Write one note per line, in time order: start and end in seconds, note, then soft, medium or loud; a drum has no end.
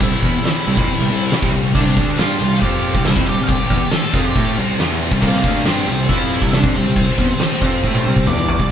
0.00 0.11 C2 medium
0.00 0.42 E4 medium
0.00 8.67 G4 medium
0.00 0.45 E5 loud
0.00 8.67 G5 medium
0.00 8.67 C6 medium
0.00 kick loud
0.00 crash medium
0.22 0.33 E2 medium
0.22 0.34 E3 loud
0.22 0.34 B3 loud
0.22 kick loud
0.22 crash medium
0.34 muted picked electric bass stroke soft
0.34 muted distorted electric guitar stroke medium
0.44 1.49 E4 medium
0.44 1.50 E5 medium
0.44 snare loud
0.44 crash medium
0.67 0.77 C2 medium
0.67 0.77 C3 medium
0.67 0.77 G3 medium
0.67 crash medium
0.77 0.87 F2 loud
0.77 0.87 F3 medium
0.77 0.88 C4 loud
0.77 kick loud
0.88 muted picked electric bass stroke soft
0.88 muted distorted electric guitar stroke medium
0.88 crash medium
0.99 1.09 C2 medium
0.99 1.08 C3 medium
0.99 1.09 G3 medium
1.09 1.31 C2 medium
1.09 1.27 C3 medium
1.09 1.27 G3 medium
1.09 crash medium
1.31 snare loud
1.31 crash medium
1.42 1.52 C2 loud
1.42 1.52 C3 medium
1.42 1.53 G3 loud
1.42 kick loud
1.53 1.73 C2 medium
1.53 1.71 C3 medium
1.53 1.71 G3 medium
1.53 crash medium
1.75 1.85 C2 medium
1.75 1.85 C3 loud
1.75 1.86 G3 loud
1.75 2.16 D4 medium
1.75 2.20 D5 medium
1.75 kick loud
1.75 crash loud
1.86 1.96 C2 medium
1.86 1.97 C3 medium
1.86 1.97 G3 medium
1.97 2.17 D2 medium
1.97 2.18 D3 loud
1.97 2.18 A3 loud
1.97 2.18 D4 loud
1.97 kick loud
1.97 crash medium
2.18 2.39 G2 medium
2.18 2.40 G3 loud
2.18 2.40 D4 loud
2.18 2.60 F4 medium
2.18 2.40 G4 loud
2.18 2.59 F5 medium
2.18 snare loud
2.18 crash medium
2.40 2.61 C2 medium
2.40 2.58 C3 medium
2.40 2.59 G3 medium
2.40 crash medium
2.60 2.93 F2 loud
2.60 2.94 F3 medium
2.60 2.94 C4 loud
2.60 2.95 F4 loud
2.60 3.02 G4 medium
2.60 3.05 G5 loud
2.60 kick loud
2.60 crash medium
2.84 crash medium
2.94 3.05 C2 loud
2.94 3.04 C3 medium
2.94 3.04 G3 loud
2.94 kick loud
3.04 3.16 C2 medium
3.04 3.16 C3 medium
3.04 3.16 G3 medium
3.04 3.26 E4 medium
3.04 3.26 E5 medium
3.04 snare loud
3.04 crash medium
3.16 3.27 F2 loud
3.16 3.27 F3 medium
3.16 3.27 C4 loud
3.16 kick loud
3.26 3.38 C2 medium
3.26 3.38 C3 medium
3.26 3.38 G3 medium
3.26 3.42 G4 medium
3.26 3.42 G5 loud
3.26 crash medium
3.39 3.59 C2 medium
3.39 3.56 C3 medium
3.39 3.56 G3 medium
3.43 3.48 F5 medium
3.48 3.90 G4 medium
3.48 3.93 G5 loud
3.48 kick loud
3.48 crash medium
3.70 3.81 E2 loud
3.70 3.81 E3 loud
3.70 3.82 B3 loud
3.70 kick loud
3.70 crash medium
3.81 muted picked electric bass stroke soft
3.81 muted distorted electric guitar stroke medium
3.91 4.13 A4 medium
3.91 4.14 A5 loud
3.91 snare loud
3.91 crash medium
4.13 4.34 F2 loud
4.13 4.36 F3 loud
4.13 4.35 C4 loud
4.13 4.36 F4 loud
4.13 4.55 G4 medium
4.13 4.55 G5 loud
4.13 kick loud
4.13 crash medium
4.35 4.56 A2 loud
4.35 4.56 A3 medium
4.35 4.57 E4 loud
4.35 4.58 A4 loud
4.35 kick loud
4.35 crash medium
4.57 4.78 C2 medium
4.57 4.78 C3 medium
4.57 4.78 G3 medium
4.57 4.79 C4 loud
4.57 crash medium
4.79 5.10 E2 medium
4.79 5.11 E3 loud
4.79 5.12 B3 loud
4.79 5.12 E4 loud
4.79 snare loud
4.79 crash medium
5.01 crash medium
5.11 5.22 C2 loud
5.11 5.22 C3 medium
5.11 5.22 G3 loud
5.11 kick loud
5.21 5.33 C2 loud
5.21 5.33 C3 loud
5.21 5.33 G3 loud
5.21 5.63 A#3 medium
5.21 5.63 A#4 loud
5.21 kick loud
5.21 crash medium
5.34 5.43 C2 medium
5.34 5.44 C3 medium
5.34 5.45 G3 medium
5.43 5.64 D2 loud
5.43 5.66 D3 loud
5.43 5.65 A3 loud
5.43 5.65 D4 loud
5.43 kick loud
5.43 crash medium
5.65 5.86 G2 loud
5.65 5.87 G3 loud
5.65 6.07 C4 medium
5.65 5.87 D4 loud
5.65 5.88 G4 loud
5.65 6.07 C5 medium
5.65 snare loud
5.65 crash medium
5.87 6.08 C2 medium
5.87 6.06 C3 medium
5.87 6.06 G3 medium
5.87 crash medium
6.09 6.40 F2 loud
6.09 6.42 F3 medium
6.09 6.42 C4 loud
6.09 6.50 E4 medium
6.09 6.42 F4 loud
6.09 6.54 E5 loud
6.09 kick loud
6.09 crash medium
6.31 crash medium
6.41 6.52 C2 loud
6.41 6.51 C3 medium
6.41 6.52 G3 loud
6.41 kick loud
6.53 6.63 C2 medium
6.53 6.64 C3 medium
6.53 6.64 G3 medium
6.53 6.74 D4 medium
6.53 6.76 D5 medium
6.53 snare loud
6.53 crash medium
6.64 6.74 F2 loud
6.64 6.74 F3 medium
6.64 6.75 C4 loud
6.64 kick loud
6.74 6.86 C2 medium
6.74 6.85 C3 medium
6.74 6.85 G3 medium
6.74 8.46 C4 medium
6.74 8.46 C5 medium
6.74 crash medium
6.86 7.07 C2 medium
6.86 7.04 C3 medium
6.86 7.04 G3 medium
6.96 kick loud
6.96 crash medium
7.18 7.29 E2 loud
7.18 7.29 E3 loud
7.18 7.29 B3 loud
7.18 kick loud
7.18 crash medium
7.31 muted picked electric bass stroke soft
7.31 muted distorted electric guitar stroke medium
7.39 snare loud
7.39 crash medium
7.62 7.82 F2 loud
7.62 7.83 F3 medium
7.62 7.83 C4 loud
7.62 7.84 F4 loud
7.62 kick loud
7.62 crash medium
7.83 8.04 A2 loud
7.83 8.05 A3 medium
7.83 8.05 E4 loud
7.83 8.05 A4 loud
7.83 kick medium
7.95 high tom medium
8.06 8.26 C2 loud
8.06 8.27 C3 medium
8.06 8.27 G3 medium
8.06 8.28 C4 medium
8.16 kick medium
8.27 8.58 E2 medium
8.27 8.60 E3 medium
8.27 8.60 B3 loud
8.27 8.60 E4 loud
8.27 8.60 D5 loud
8.27 mid tom medium
8.49 floor tom loud
8.59 8.69 C2 loud
8.59 8.71 C3 medium
8.59 8.71 G3 medium
8.59 8.71 D5 loud
8.59 kick loud